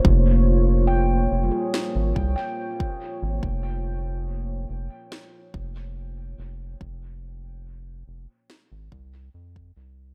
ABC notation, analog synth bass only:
X:1
M:4/4
L:1/16
Q:1/4=71
K:Bbdor
V:1 name="Analog synth bass" clef=bass
F,,,6 F,,, z2 A,,, C,, z4 A,,, | F,,,6 F,,, z3 F,,,4 F,,,2 | F,,,6 F,,, z2 A,,, C,,2 F,,2 C,,2 |]